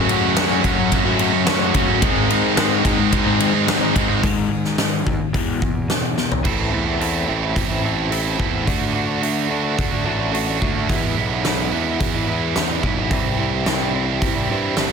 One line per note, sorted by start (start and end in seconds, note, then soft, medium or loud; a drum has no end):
0.00 0.35 F#2 loud
0.00 0.60 F#2 loud
0.00 0.35 C#3 loud
0.00 0.36 F#3 loud
0.00 0.10 F#4 loud
0.08 0.35 F#3 medium
0.08 0.35 A3 medium
0.08 0.36 C#4 medium
0.08 0.37 F#4 medium
0.08 ride medium
0.36 0.63 F#2 medium
0.36 0.63 C#3 medium
0.36 0.62 F#3 medium
0.36 0.64 F#3 medium
0.36 0.50 A3 loud
0.36 0.50 C#4 loud
0.36 0.48 F#4 loud
0.36 snare loud
0.36 ride loud
0.49 0.62 A3 medium
0.49 0.63 C#4 medium
0.49 0.64 F#4 medium
0.63 0.90 F#2 medium
0.63 0.91 C#3 medium
0.63 1.05 F#3 medium
0.63 0.91 F#3 medium
0.63 0.78 A3 medium
0.63 0.77 C#4 medium
0.63 0.75 F#4 medium
0.63 kick medium
0.63 ride medium
0.77 1.05 A3 medium
0.77 1.04 C#4 medium
0.77 1.03 F#4 medium
0.77 muted overdriven electric guitar stroke medium
0.91 1.44 F#2 medium
0.91 1.71 F#2 loud
0.91 1.45 C#3 loud
0.91 1.45 F#3 loud
0.91 kick medium
0.91 ride medium
1.04 1.18 A3 medium
1.04 1.19 C#4 medium
1.04 1.19 F#4 medium
1.18 1.45 F#3 medium
1.18 1.34 A3 medium
1.18 1.33 C#4 medium
1.18 1.31 F#4 medium
1.18 ride medium
1.32 1.46 A3 medium
1.32 1.46 C#4 medium
1.32 1.47 F#4 medium
1.32 muted overdriven electric guitar stroke medium
1.46 1.73 F#2 medium
1.46 1.73 C#3 loud
1.46 1.72 F#3 medium
1.46 1.73 F#3 loud
1.46 1.74 A3 loud
1.46 1.74 C#4 loud
1.46 1.75 F#4 loud
1.46 snare loud
1.46 ride medium
1.73 2.00 F#2 medium
1.73 2.00 C#3 medium
1.73 2.00 F#3 medium
1.73 1.89 A3 medium
1.73 1.88 C#4 medium
1.73 1.87 F#4 medium
1.73 kick medium
1.73 ride medium
1.88 2.02 A3 medium
1.88 2.01 C#4 medium
1.88 2.00 F#4 medium
2.02 2.56 G#2 loud
2.02 2.81 G#2 loud
2.02 2.56 D#3 loud
2.02 2.28 D#3 loud
2.02 2.29 G#3 loud
2.02 2.57 G#3 loud
2.02 2.29 C4 loud
2.02 2.30 D#4 loud
2.02 kick loud
2.02 ride loud
2.29 2.57 D#3 medium
2.29 2.57 G#3 medium
2.29 2.58 C4 medium
2.29 2.59 D#4 medium
2.29 ride medium
2.57 2.83 G#2 medium
2.57 2.99 G#2 medium
2.57 2.84 D#3 medium
2.57 2.83 D#3 loud
2.57 2.84 G#3 medium
2.57 2.72 G#3 loud
2.57 2.71 C4 loud
2.57 2.70 D#4 medium
2.57 snare loud
2.57 ride loud
2.71 2.84 G#3 medium
2.71 2.85 C4 medium
2.71 2.86 D#4 medium
2.84 3.11 G#2 medium
2.84 3.26 D#3 medium
2.84 3.11 D#3 medium
2.84 2.99 G#3 medium
2.84 3.12 G#3 medium
2.84 2.98 C4 medium
2.84 2.97 D#4 medium
2.84 kick medium
2.84 ride medium
2.98 3.27 G#3 medium
2.98 3.26 C4 medium
2.98 3.25 D#4 medium
2.98 muted overdriven electric guitar stroke medium
3.12 3.66 G#2 medium
3.12 3.91 G#2 loud
3.12 3.67 D#3 loud
3.12 3.67 G#3 loud
3.12 kick medium
3.12 ride loud
3.26 3.40 G#3 medium
3.26 3.41 C4 medium
3.26 3.41 D#4 medium
3.40 3.68 D#3 medium
3.40 3.55 G#3 medium
3.40 3.54 C4 medium
3.40 3.53 D#4 medium
3.40 ride medium
3.54 3.69 G#3 medium
3.54 3.69 C4 medium
3.54 3.70 D#4 medium
3.54 muted overdriven electric guitar stroke soft
3.67 3.94 G#2 medium
3.67 4.22 G#2 loud
3.67 3.95 D#3 medium
3.67 3.95 G#3 medium
3.67 3.95 G#3 loud
3.67 3.96 C4 medium
3.67 3.97 D#4 loud
3.67 snare loud
3.67 ride loud
3.95 4.21 G#2 medium
3.95 4.22 G#2 medium
3.95 4.22 D#3 medium
3.95 4.22 G#3 medium
3.95 4.11 G#3 medium
3.95 4.10 C4 medium
3.95 4.08 D#4 medium
3.95 kick medium
3.95 ride medium
4.10 4.23 G#3 medium
4.10 4.22 C4 medium
4.10 4.21 D#4 medium
4.22 4.49 G#2 medium
4.22 5.07 G#2 medium
4.22 4.49 D#3 medium
4.22 4.49 G#3 loud
4.22 kick loud
4.22 open hi-hat medium
4.51 4.76 G#2 medium
4.51 4.76 D#3 medium
4.65 snare soft
4.78 5.03 G#2 medium
4.78 5.03 D#3 medium
4.78 snare loud
4.78 open hi-hat soft
5.06 5.19 D#2 medium
5.06 5.31 G#2 medium
5.06 5.31 D#3 medium
5.06 kick medium
5.33 5.59 E2 medium
5.33 5.60 E2 loud
5.33 5.61 B2 medium
5.33 5.60 E3 medium
5.33 5.60 G#3 medium
5.33 kick medium
5.33 open hi-hat soft
5.61 5.86 E2 medium
5.61 6.41 E2 medium
5.61 5.87 B2 medium
5.61 5.86 E3 medium
5.61 kick medium
5.88 6.14 E2 medium
5.88 6.15 B2 medium
5.88 6.14 E3 medium
5.88 snare medium
5.88 open hi-hat soft
6.16 6.41 E2 medium
6.16 6.42 B2 medium
6.16 6.42 E3 medium
6.16 snare medium
6.32 floor tom medium
6.45 6.71 A1 medium
6.45 6.71 A2 medium
6.45 6.71 E3 medium
6.45 6.72 A3 medium
6.45 6.72 C4 medium
6.45 6.72 E4 medium
6.45 6.74 A4 medium
6.45 kick loud
6.45 crash medium
6.72 7.25 E2 medium
6.72 6.99 A2 medium
6.72 6.99 E3 medium
6.72 7.01 A3 medium
6.72 7.00 C4 medium
6.72 7.00 E4 medium
6.72 7.01 A4 medium
6.85 7.00 A3 medium
6.85 7.00 C4 medium
6.85 7.00 E4 medium
7.00 7.27 A2 medium
7.00 7.27 E3 medium
7.00 7.28 A3 medium
7.00 7.28 C4 medium
7.00 7.28 E4 medium
7.00 7.29 A4 medium
7.00 open hi-hat soft
7.28 7.55 A1 medium
7.28 7.54 A2 medium
7.28 7.55 E3 medium
7.28 7.55 A3 medium
7.28 7.55 C4 medium
7.28 7.56 E4 medium
7.28 7.56 A4 medium
7.42 7.70 A3 soft
7.42 7.69 C4 medium
7.42 7.68 E4 medium
7.55 8.36 A1 medium
7.55 7.81 A2 medium
7.55 7.82 E3 medium
7.55 7.82 A3 medium
7.55 7.83 C4 medium
7.55 7.83 E4 medium
7.55 7.83 A4 medium
7.55 kick medium
7.55 open hi-hat soft
7.69 7.82 A3 soft
7.69 7.83 C4 medium
7.69 7.84 E4 medium
7.83 8.10 A2 medium
7.83 8.10 E3 medium
7.83 8.10 A3 medium
7.83 8.11 C4 medium
7.83 8.11 E4 medium
7.83 8.11 A4 medium
8.11 8.38 A2 medium
8.11 8.38 E3 medium
8.11 8.38 A3 medium
8.11 8.39 C4 medium
8.11 8.39 E4 medium
8.11 8.39 A4 medium
8.11 open hi-hat soft
8.24 8.37 A3 medium
8.24 8.38 C4 medium
8.24 8.39 E4 medium
8.39 8.66 E2 medium
8.39 8.65 A2 medium
8.39 8.65 E3 medium
8.39 8.65 A3 medium
8.39 8.66 C4 medium
8.39 8.66 E4 medium
8.39 8.66 A4 medium
8.39 kick medium
8.52 8.66 A3 soft
8.52 8.65 C4 medium
8.52 8.65 E4 medium
8.66 9.74 D2 medium
8.66 8.92 D3 medium
8.66 8.93 A3 medium
8.66 8.93 D4 medium
8.66 8.94 F#4 medium
8.66 kick loud
8.66 open hi-hat soft
8.94 9.21 D3 medium
8.94 9.21 A3 medium
8.94 9.22 D4 medium
8.94 9.21 F#4 medium
9.07 9.21 A3 medium
9.07 9.22 D4 medium
9.07 9.22 F#4 medium
9.22 9.48 D3 medium
9.22 9.48 A3 medium
9.22 9.49 D4 medium
9.22 9.49 F#4 medium
9.22 open hi-hat soft
9.49 9.75 D3 medium
9.49 9.76 A3 medium
9.49 9.77 D4 medium
9.49 9.77 F#4 medium
9.63 9.92 A3 medium
9.63 9.91 D4 medium
9.63 9.90 F#4 medium
9.76 10.04 D2 medium
9.76 10.04 D3 medium
9.76 10.04 A3 medium
9.76 10.05 D4 loud
9.76 10.05 F#4 medium
9.76 kick loud
9.76 open hi-hat soft
9.91 10.05 A3 medium
9.91 10.05 D4 medium
9.91 10.06 F#4 medium
10.05 10.58 A1 medium
10.05 10.31 D3 medium
10.05 10.32 A3 medium
10.05 10.32 D4 medium
10.05 10.33 F#4 medium
10.32 10.58 D3 medium
10.32 10.59 A3 medium
10.32 10.60 D4 medium
10.32 10.60 F#4 medium
10.32 open hi-hat soft
10.47 10.60 A3 medium
10.47 10.61 D4 medium
10.47 10.62 F#4 medium
10.60 10.88 D2 medium
10.60 10.87 D3 medium
10.60 10.87 A3 medium
10.60 10.87 D4 medium
10.60 10.87 F#4 medium
10.60 kick medium
10.75 10.89 A3 medium
10.75 10.88 D4 medium
10.75 10.87 F#4 medium
10.88 11.43 E2 medium
10.88 11.16 E2 medium
10.88 11.44 B2 medium
10.88 11.16 E3 medium
10.88 11.16 G#3 medium
10.88 11.16 B3 medium
10.88 11.17 E4 loud
10.88 kick medium
10.88 open hi-hat soft
11.16 11.69 B1 medium
11.16 11.43 E3 medium
11.16 11.43 G#3 medium
11.16 11.43 B3 medium
11.16 11.44 E4 medium
11.31 11.45 E3 medium
11.31 11.45 G#3 medium
11.31 11.45 B3 medium
11.31 11.46 E4 medium
11.43 12.00 E2 medium
11.43 12.01 B2 medium
11.43 11.71 E3 medium
11.43 11.71 G#3 medium
11.43 11.71 B3 medium
11.43 11.73 E4 medium
11.43 snare medium
11.43 open hi-hat soft
11.72 11.98 E2 medium
11.72 11.99 E3 medium
11.72 11.99 G#3 medium
11.72 11.99 B3 medium
11.72 12.00 E4 medium
11.86 12.16 E3 medium
11.86 12.14 G#3 medium
11.86 12.13 B3 medium
11.86 12.13 E4 medium
11.99 12.80 E2 medium
11.99 12.26 E3 medium
11.99 12.26 G#3 medium
11.99 12.27 B3 medium
11.99 12.28 E4 medium
11.99 kick medium
11.99 open hi-hat soft
12.13 12.27 E3 soft
12.13 12.27 G#3 medium
12.13 12.28 B3 medium
12.13 12.29 E4 medium
12.27 12.55 E3 medium
12.27 12.54 G#3 medium
12.27 12.55 B3 medium
12.27 12.56 E4 medium
12.55 12.97 E2 medium
12.55 12.97 B2 medium
12.55 12.82 E3 medium
12.55 12.83 G#3 medium
12.55 12.83 B3 medium
12.55 12.84 E4 medium
12.55 snare medium
12.55 open hi-hat soft
12.68 12.82 E3 soft
12.68 12.82 G#3 medium
12.68 12.83 B3 medium
12.68 12.84 E4 medium
12.83 13.09 B1 medium
12.83 13.11 E3 medium
12.83 13.10 G#3 medium
12.83 13.10 B3 medium
12.83 13.12 E4 medium
12.83 kick medium
12.96 13.11 E3 medium
12.96 13.10 G#3 medium
12.96 13.09 B3 medium
12.96 13.12 E4 medium
13.10 14.18 C2 medium
13.10 13.37 C3 medium
13.10 13.38 E3 medium
13.10 13.38 G3 medium
13.10 13.39 C4 medium
13.10 13.39 E4 medium
13.10 kick loud
13.10 open hi-hat soft
13.38 13.64 C3 medium
13.38 13.65 E3 medium
13.38 13.65 G3 medium
13.38 13.66 C4 medium
13.38 13.67 E4 medium
13.52 13.66 G3 medium
13.52 13.67 C4 medium
13.52 13.68 E4 medium
13.65 13.92 C3 medium
13.65 13.94 E3 medium
13.65 13.93 G3 medium
13.65 13.94 C4 medium
13.65 13.95 E4 medium
13.65 snare loud
13.65 open hi-hat soft
13.93 14.20 C3 medium
13.93 14.21 E3 medium
13.93 14.21 G3 medium
13.93 14.21 C4 medium
13.93 14.21 E4 medium
14.07 14.36 G3 medium
14.07 14.36 C4 medium
14.07 14.34 E4 medium
14.21 14.48 C2 medium
14.21 14.48 C3 medium
14.21 14.48 E3 medium
14.21 14.49 G3 medium
14.21 14.49 C4 medium
14.21 14.49 E4 medium
14.21 kick medium
14.21 open hi-hat soft
14.35 14.49 G3 medium
14.35 14.50 C4 medium
14.35 14.51 E4 medium
14.49 14.76 G2 medium
14.49 14.75 C3 medium
14.49 14.76 E3 medium
14.49 14.76 G3 medium
14.49 14.76 C4 medium
14.49 14.77 E4 medium
14.76 14.92 G1 medium
14.76 14.92 C3 medium
14.76 14.92 E3 medium
14.76 14.91 G3 medium
14.76 14.92 C4 medium
14.76 14.92 E4 medium
14.76 snare medium
14.76 open hi-hat soft